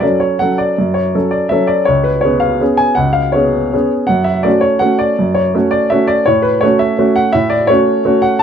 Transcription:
0.00 F#3 C#4 A4 D5
0.20 C#5
0.39 F#3 C#4 A4 F#5
0.58 D5
0.78 F#2
0.94 C#5
1.15 F#3 C#4 A4
1.31 D5
1.49 F#3 C#4 A4 E5
1.67 D5
1.85 C#2 C#5
2.04 B4
2.21 B3 C#4 G#4 C#5
2.40 F5
2.61 B3 C#4 G#4
2.77 G#5
2.95 C#2 F#5
3.13 F5
3.32 B3 C#4 G#4 C#5
3.73 B3 C#4 G#4
4.07 F#2 F#5
4.24 E5
4.43 A3 C#4 F#4 D5
4.61 C#5
4.79 A3 C#4 F#4 F#5
4.99 D5
5.19 F#2
5.35 C#5
5.54 A3 C#4 F#4
5.71 D5
5.90 A3 C#4 F#4 E5
6.07 D5
6.26 A2 C#5
6.42 B4
6.61 A3 C#4 F#4 C#5
6.79 E5
6.99 A3 C#4 F#4
7.16 F#5
7.33 A2 E5
7.50 D5
7.67 A3 C#4 F#4 C#5
8.05 A3 C#4 F#4
8.22 F#5
8.39 A5

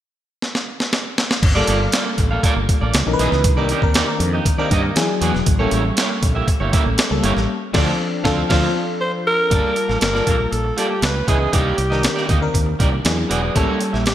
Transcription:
0.42 snare
0.55 snare
0.80 snare
0.93 snare
1.18 snare
1.31 snare
1.42 G1, muted clean electric guitar stroke, kick, crash
1.55 G3 A#3 F4 A4 D5
1.67 G1 A#3 F4 A4 D5, closed hi-hat
1.80 muted clean electric guitar stroke
1.92 A#3 F4 A4 D5, snare, closed hi-hat
2.06 muted clean electric guitar stroke
2.18 A1, muted clean electric guitar stroke, kick, closed hi-hat
2.31 A#3 F4 A4 F5
2.43 A#3 F4 A4 D5, kick, closed hi-hat
2.56 G1, muted clean electric guitar stroke
2.69 muted clean electric guitar stroke, kick, closed hi-hat
2.81 A1 A#3 F4 A4 D5
2.94 C#2, snare, closed hi-hat
3.06 B1 E3 C#4 D#4 A#4, muted clean electric guitar stroke
3.13 B4
3.19 B1 B3 E4 G#4 D#5, closed hi-hat
3.32 C#2, muted clean electric guitar stroke, snare
3.44 C2, muted clean electric guitar stroke, kick, closed hi-hat
3.56 D#3 A#3 C4 D4 D#4 G4 A#4 D5
3.69 A#3 D#4 G4 D5, closed hi-hat
3.82 D#2 D#3 C4 D4 A#4, muted clean electric guitar stroke, kick
3.94 A#3 D#4 G4 D5, snare, closed hi-hat
4.07 D#3 C4 D4 A#4, muted clean electric guitar stroke
4.20 F2, muted clean electric guitar stroke, closed hi-hat
4.33 A#3 D#4 G4 D#5
4.45 muted clean electric guitar stroke, kick, closed hi-hat
4.58 D#3 A#3 C4 D4 D#4 G4 A#4 D5
4.71 G2 A#3 D#4 G4 D#5, kick, closed hi-hat
4.84 muted clean electric guitar stroke
4.96 E3 F#3 D4 E4 G#4, snare, closed hi-hat
5.09 muted clean electric guitar stroke
5.21 E2 B3 F#4 G#4 D5, closed hi-hat
5.34 E1, muted clean electric guitar stroke, snare
5.46 A1, muted clean electric guitar stroke, kick, closed hi-hat
5.58 G3 A#3 C#4 E4 G4 A4 C#5
5.71 A1 A#3 E4 G4 C#5, closed hi-hat
5.85 muted clean electric guitar stroke
5.97 A#3 E4 G4 C#5, snare, closed hi-hat
6.10 muted clean electric guitar stroke
6.23 A#1, muted clean electric guitar stroke, kick, closed hi-hat
6.35 A#3 E4 G4 E5
6.48 muted clean electric guitar stroke, kick, closed hi-hat
6.60 G1 A#3 E4 G4 C#5
6.73 A#3 E4 G4 E5, kick, closed hi-hat
6.85 A1, muted clean electric guitar stroke
6.98 muted clean electric guitar stroke, snare, closed hi-hat
7.10 C#2 G3 A#3 C#4 A4, muted clean electric guitar stroke
7.23 G1 A#3 E4 G4 C#5, closed hi-hat
7.35 A1, muted clean electric guitar stroke, snare
7.73 D2 F3 C4 D4 F4 A4 D5, kick, snare, crash
8.24 D2 F3 C4 D4 F4 A4 F5, kick, snare
8.49 D2 F3 C4 D4 F4 A4 F5, kick, snare, crash
9.01 C5
9.27 A#4
9.50 G1 G3 A#3 F4 A4 D5 A5, kick, closed hi-hat
9.76 muted clean electric guitar stroke, closed hi-hat
9.88 A1 A#3 F4 A4 F5, snare
10.01 G1 A#4, muted clean electric guitar stroke, snare, closed hi-hat
10.14 G3 A#3 F4 A4 D5 A5, snare
10.27 A#1 A#3 F4 A4 F5, kick, closed hi-hat
10.39 muted clean electric guitar stroke
10.52 A#1 A4, closed hi-hat
10.64 muted clean electric guitar stroke
10.77 G3 A#3 F4 G4 A4 D5, closed hi-hat
10.89 muted clean electric guitar stroke
11.02 C#2 B4, muted clean electric guitar stroke, snare, closed hi-hat
11.15 muted clean electric guitar stroke
11.27 C#2 E3 B3 C#4 D#4 E4 G#4 B4 D#5, kick, closed hi-hat
11.40 B3 E4 G#4 D#5
11.52 C2 A#3 D#4 G4 D5, kick, closed hi-hat
11.78 C2, muted clean electric guitar stroke, closed hi-hat
11.90 D#3 A#3 C4 D4 D#4 G4 A#4 D#5, snare
12.03 muted clean electric guitar stroke, snare, closed hi-hat
12.16 A#3 D#4 G4 D5, snare
12.28 D2 A#3 D#4 G4 D#5, kick, closed hi-hat
12.41 D#3 C4 D4 A#4, muted clean electric guitar stroke
12.54 D#2, muted clean electric guitar stroke, kick, closed hi-hat
12.66 muted clean electric guitar stroke
12.79 C2 A#3 D#4 G4 D5, kick, closed hi-hat
12.92 muted clean electric guitar stroke
13.04 E2 F#3 D4 E4 G#4, muted clean electric guitar stroke, snare, closed hi-hat
13.17 muted clean electric guitar stroke
13.29 E1 B3 F#4 G#4 D5, closed hi-hat
13.43 B3 F#4 G#4 D5
13.55 A1 G3 A#3 C#4 E4 G4 A4 C#5, kick, closed hi-hat
13.81 muted clean electric guitar stroke, closed hi-hat
13.93 A#1 A#3 E4 G4 E5, snare
14.06 A1 G4, muted clean electric guitar stroke, snare, closed hi-hat

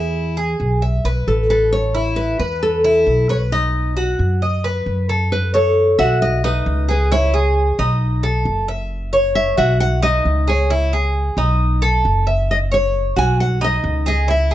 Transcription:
Already playing: E2 E4 G#4
0.37 G#4
0.60 B1
0.82 E5
1.05 B1 B4
1.27 A1 A4
1.50 A4 B4
1.73 C#5
1.95 E4
2.16 B4
2.40 E2 B4
2.63 A4
2.84 E4
3.07 B1
3.29 B4 C#5
3.52 D#4 D#5
3.97 F#4
4.19 F#2
4.42 D#5
4.64 B4
4.86 F#2
5.09 A4
5.32 B4
5.54 A4 C#5
5.99 B1 F#4 E5
6.22 D#5
6.44 D#4 B4
6.66 C#2
6.88 G#4 B4
7.12 E4 C#5
7.34 G#4
7.79 B1 D#4
8.23 A4
8.45 F#1
8.68 E5
9.13 C#5
9.35 E5
9.57 B1 F#4 E5
9.80 F#5
10.02 D#4 D#5
10.25 C#2
10.48 G#4 C#5
10.70 E4
10.93 G#4
11.37 B1 D#4
11.82 A4
12.05 F#1
12.27 E5
12.51 D#5
12.72 C#5
13.16 B1 F#4 G#5
13.40 F#5
13.61 D#4 D#5
13.84 C#2
14.06 G#4 D#5
14.28 E4 E5
14.51 G#4

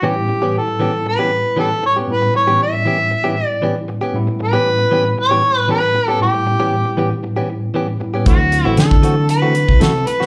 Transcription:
0.02 A2 E3 G3 B3 C#4 E4 G4
0.07 G4
0.16 muted clean electric guitar stroke
0.28 muted clean electric guitar stroke
0.42 E3 B3 C#4 G4
0.58 A4
0.68 muted clean electric guitar stroke
0.80 E3 B3 C#4 G4
0.93 muted clean electric guitar stroke
1.06 B4, muted clean electric guitar stroke
1.19 E3 B3 C#4 G4
1.31 muted clean electric guitar stroke
1.57 E3 B3 C#4 G4 A4
1.71 muted clean electric guitar stroke
1.83 C#5, muted clean electric guitar stroke
1.96 B3 C#4 G4
2.08 A2 G3 B3 C#4 E4
2.12 B4
2.22 muted clean electric guitar stroke
2.34 C#5, muted clean electric guitar stroke
2.47 E3 B3 C#4 G4
2.63 E5
2.73 muted clean electric guitar stroke
2.85 E3 B3 C#4 G4
2.99 muted clean electric guitar stroke
3.11 muted clean electric guitar stroke
3.24 E3 B3 C#4 G4
3.37 muted clean electric guitar stroke
3.47 D5
3.62 E3 B3 C#4 G4
3.76 muted clean electric guitar stroke
3.88 muted clean electric guitar stroke
4.01 B3 C#4 G4
4.13 A2 G3 B3 C#4 E4
4.27 muted clean electric guitar stroke
4.40 muted clean electric guitar stroke
4.44 B4
4.53 E3 B3 C#4 G4
4.79 muted clean electric guitar stroke
4.91 E3 B3 C#4 G4
5.05 muted clean electric guitar stroke
5.18 C#5, muted clean electric guitar stroke
5.31 E3 B3 C#4 G4
5.43 muted clean electric guitar stroke
5.68 E3 B3 C#4 G4 B4
5.82 muted clean electric guitar stroke
5.95 muted clean electric guitar stroke
6.08 B3 C#4 G4
6.20 A2 G3 B3 C#4 E4 G4
6.34 muted clean electric guitar stroke
6.46 muted clean electric guitar stroke
6.60 E3 B3 C#4 G4
6.85 muted clean electric guitar stroke
6.97 E3 B3 C#4 G4
7.11 muted clean electric guitar stroke
7.23 muted clean electric guitar stroke
7.36 E3 B3 C#4 G4
7.49 muted clean electric guitar stroke
7.74 E3 B3 C#4 G4
7.88 muted clean electric guitar stroke
8.00 A2 G3 B3 C#4 E4, muted clean electric guitar stroke
8.14 B3 C#4 G4
8.25 D2 E3 F#3 A3 C4 E4 F#4, kick, closed hi-hat
8.40 muted clean electric guitar stroke
8.52 muted clean electric guitar stroke, closed hi-hat
8.65 A1 E3 A3 C4 F#4
8.77 D3 A4, snare, closed hi-hat
8.91 muted clean electric guitar stroke, kick
9.03 E3 A3 C4 F#4, closed hi-hat
9.17 muted clean electric guitar stroke
9.29 B4, muted clean electric guitar stroke, closed hi-hat
9.42 E3 A3 C4 F#4
9.55 muted clean electric guitar stroke, closed hi-hat
9.68 C2, kick
9.80 C3 E3 A3 C4 F#4 A4, snare, closed hi-hat
9.94 muted clean electric guitar stroke
10.06 B4, muted clean electric guitar stroke, closed hi-hat
10.20 A3 C4 F#4, snare

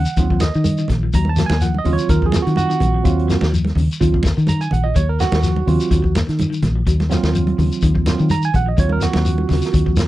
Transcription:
Already playing: F#5
0.05 closed hi-hat, shekere
0.17 D#2 D#3 F#3 C4 F4, kick, closed hi-hat, high conga, shekere
0.30 F3, kick
0.40 D#5, snare, closed hi-hat, high conga, shekere
0.54 D#3, shekere
0.64 closed hi-hat, high conga, shekere
0.78 D#3, shekere
0.88 A#1, kick, snare, closed hi-hat, low conga, shekere
1.03 F3
1.13 D#2 F#3 A#5, kick, closed hi-hat, high conga, shekere
1.25 high conga
1.29 A5
1.36 F#3, snare, closed hi-hat, low conga, shekere
1.46 D#2 G#5, closed hi-hat, high conga, shekere
1.51 snare
1.61 F3 F#5, snare, closed hi-hat, high conga, shekere
1.74 high conga
1.79 D#5
1.84 D#2 C#3 F#3 C4 F4, open hi-hat, low conga, shekere
1.93 C#5
1.98 closed hi-hat, shekere
2.09 D#2 D#3 A#4, kick, closed hi-hat, shekere
2.22 F3, kick
2.26 G#4
2.32 snare, closed hi-hat, high conga, shekere
2.42 F#4
2.47 D#3, closed hi-hat, shekere
2.56 F#4, closed hi-hat, high conga, shekere
2.70 D#3, closed hi-hat, shekere
2.80 A#1, kick, closed hi-hat, high conga, low conga, shekere
2.94 F3
3.03 D#2 F#3 C4 F4, kick, closed hi-hat, high conga, shekere
3.19 closed hi-hat
3.28 F#3, snare, closed hi-hat, shekere
3.41 D#2, snare, high conga, shekere
3.52 F3, closed hi-hat, high conga, shekere
3.65 snare, closed hi-hat, high conga
3.75 D#2 C#3, open hi-hat, low conga, shekere
3.91 closed hi-hat, shekere
4.00 D#2 D#3 F#3 C4 F4, kick, closed hi-hat, high conga, shekere
4.14 F3, kick
4.23 kick, snare, closed hi-hat, high conga, shekere
4.37 D#3, shekere
4.47 A#5, closed hi-hat, high conga, shekere
4.61 G#5, muted clean electric guitar stroke, shekere
4.71 A#1 F#5, closed hi-hat, low conga, shekere
4.84 F3 D#5
4.94 D#2 F#3 C#5, kick, closed hi-hat, high conga, shekere
5.09 A#4
5.20 F#3 F#4, snare, closed hi-hat, shekere
5.32 D#2, snare, closed hi-hat, high conga, shekere
5.43 F3, snare, closed hi-hat, high conga, shekere
5.56 high conga
5.66 D#2 C#3 F#3 C4 F4, open hi-hat, low conga, shekere
5.80 closed hi-hat, shekere
5.91 D#2 D#3, kick, closed hi-hat, high conga, shekere
6.02 F3, kick
6.15 snare, closed hi-hat, high conga, shekere
6.27 D#3, snare, closed hi-hat, shekere
6.38 closed hi-hat, high conga, low conga, shekere
6.50 D#3, closed hi-hat, shekere
6.63 A#1, kick, snare, closed hi-hat, high conga, low conga, shekere
6.76 F3
6.87 D#2 F#3, kick, closed hi-hat, high conga, shekere
7.00 snare, closed hi-hat, high conga
7.10 F#3 C4 F4, snare, closed hi-hat, shekere
7.23 D#2, snare, high conga, shekere
7.34 F3, closed hi-hat, high conga, shekere
7.47 closed hi-hat, high conga
7.58 D#2 C#3, open hi-hat, low conga, shekere
7.72 closed hi-hat, shekere
7.81 D#2 D#3, kick, closed hi-hat, high conga, shekere
7.95 F3, kick
8.06 F#3 C4 F4, snare, closed hi-hat, high conga, shekere
8.18 D#3, shekere
8.30 A#5, closed hi-hat, high conga, low conga, shekere
8.43 G#5, shekere
8.54 A#1 F#5, kick, closed hi-hat, low conga, shekere
8.66 F3 D#5
8.77 D#2 F#3 C4 F4 C#5, kick, closed hi-hat, high conga, shekere
8.89 A#4, high conga
9.00 F#3 F#4, snare, closed hi-hat, shekere
9.13 D#2, snare, closed hi-hat, high conga, shekere
9.25 F3, closed hi-hat, high conga, shekere
9.38 high conga
9.49 D#2 C#3, snare, open hi-hat, low conga, shekere
9.62 snare, closed hi-hat, shekere
9.73 D#2 D#3, kick, closed hi-hat, high conga, shekere
9.86 F3, kick
9.96 snare, closed hi-hat, high conga, shekere

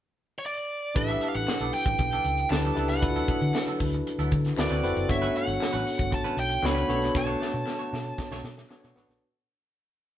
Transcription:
0.39 C#5
0.46 D5
0.95 A1 D4 E4 G4 A4 B4 E5, muted clean electric guitar stroke, kick, closed hi-hat
1.08 G3 B3 D4 A4, closed hi-hat
1.21 G3 B3 D4 A4, closed hi-hat
1.28 F5
1.35 A1 F#5, muted clean electric guitar stroke, closed hi-hat
1.48 muted clean electric guitar stroke, snare, clap
1.60 B1 G3 B3 D4 A4, closed hi-hat
1.73 G5, muted clean electric guitar stroke, open hi-hat
1.86 A1, muted clean electric guitar stroke, kick, closed hi-hat
1.99 B1, muted clean electric guitar stroke, kick, closed hi-hat
2.11 G3 B3 D4 A4, closed hi-hat
2.24 C#2, muted clean electric guitar stroke, closed hi-hat
2.37 muted clean electric guitar stroke, closed hi-hat
2.50 D2 D4 E4 G4 A4 B4 A5, muted clean electric guitar stroke, snare, clap
2.65 G3 B3 D4 A4, closed hi-hat
2.75 C#2 G3 B3 D4 E4 G4 A4 B4, closed hi-hat
2.79 A4
2.89 F#5, muted clean electric guitar stroke, snare, closed hi-hat
3.01 D2 D4 E4 F4 A4 B4, muted clean electric guitar stroke, kick, closed hi-hat
3.08 F#4
3.16 F#3 B3 E4 A4, closed hi-hat
3.28 F#3 B3 E4 A4, kick, closed hi-hat
3.41 D3, muted clean electric guitar stroke, closed hi-hat
3.54 muted clean electric guitar stroke, snare, clap
3.67 F#3 B3 E4 A4, closed hi-hat
3.80 D2, muted clean electric guitar stroke, kick, open hi-hat
3.94 muted clean electric guitar stroke, closed hi-hat
4.07 muted clean electric guitar stroke, closed hi-hat
4.18 D2 F#3 B3 E4 A4, closed hi-hat
4.32 D3, muted clean electric guitar stroke, kick, closed hi-hat
4.45 muted clean electric guitar stroke, snare, closed hi-hat
4.57 D2 C4 E4 F#4 A4 B4 D5, muted clean electric guitar stroke, snare, clap
4.70 D2 C4 E4 F#4 B4, closed hi-hat
4.83 F1 C4 E4 F#4 A4 B4, closed hi-hat
4.96 F#1, muted clean electric guitar stroke, closed hi-hat
5.08 G1 B3 D4 F#4 A4 C#5 E5, muted clean electric guitar stroke, kick, closed hi-hat
5.22 A3 C#4 F#4 B4, closed hi-hat
5.35 A3 C#4 F#4 B4 F#5, closed hi-hat
5.47 G1, muted clean electric guitar stroke, closed hi-hat
5.60 muted clean electric guitar stroke, snare, clap
5.73 A1 A3 C#4 F#4 B4, closed hi-hat
5.86 muted clean electric guitar stroke, open hi-hat
5.98 G1, muted clean electric guitar stroke, kick, closed hi-hat
6.11 A1 A5, muted clean electric guitar stroke, kick, closed hi-hat
6.24 A3 C#4 F#4 B4, closed hi-hat
6.37 B1 G5, muted clean electric guitar stroke, closed hi-hat
6.49 muted clean electric guitar stroke, closed hi-hat
6.63 C#2 B3 D4 F#4 A4 C#5 B5, muted clean electric guitar stroke, snare, clap
6.74 A3 C#4 F#4 B4, closed hi-hat
6.88 B1 A3 B3 C#4 D4 F#4 A4 C#5, closed hi-hat
6.95 D4
7.00 muted clean electric guitar stroke, snare, closed hi-hat
7.13 B1, muted clean electric guitar stroke, kick, snare
7.17 A5
7.26 A3 D4 F#4 C#5
7.40 A3 D4 F#4 C#5, snare
7.53 B2, muted clean electric guitar stroke
7.66 muted clean electric guitar stroke, snare, clap
7.79 A3 D4 F#4 C#5
7.92 B2, muted clean electric guitar stroke, snare
8.04 muted clean electric guitar stroke
8.18 muted clean electric guitar stroke, kick, snare
8.31 B1 A3 D4 F#4 C#5, snare
8.44 B2, muted clean electric guitar stroke, snare
8.58 muted clean electric guitar stroke, snare
8.69 B3 D4 F#4 A4 C#5, muted clean electric guitar stroke, snare, clap
8.84 B2 A3 D4 F#4 C#5, snare
8.96 A3 B3 D4 F#4 A4 B4 C#5, snare
9.09 A#1, muted clean electric guitar stroke, snare

